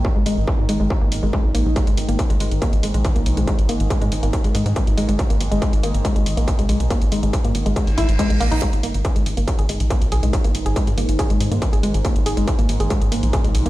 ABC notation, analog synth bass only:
X:1
M:4/4
L:1/16
Q:1/4=140
K:G#m
V:1 name="Analog synth bass" clef=bass
z G,,, G,,, G,,, z G,, G,,, G,,, z G,,, G,,, G,,, z A,,, A,,, A,,, | z G,,, G,,, G,,, z G,,, G,,, G,,, z G,,, G,,, A,,, z B,,, B,,, B,,, | z G,,, G,,, G,,, z G,, G,,, G,,, z G,,, G,, G,, z G,,, G,,, G,,, | z G,,, G,,, G,,, z G,,, G,,, G,,, z G,,, G,,, A,,, z B,,, B,,, B,,, |
z G,,, G,,, G,,, z G,, G,,, G,,, z G,,, G,,, G,,, z A,,, A,,, A,,, | z G,,, G,,, G,,, z G,,, G,,, G,,, z G,,, G,,, A,,, z B,,, B,,, B,,, | z G,,, G,,, G,,, z G,, G,,, G,,, z G,,, G,, G,, z G,,, G,,, G,,, | z G,,, G,,, G,,, z G,,, G,,, G,,, z G,,, G,,, A,,, z B,,, B,,, B,,, |]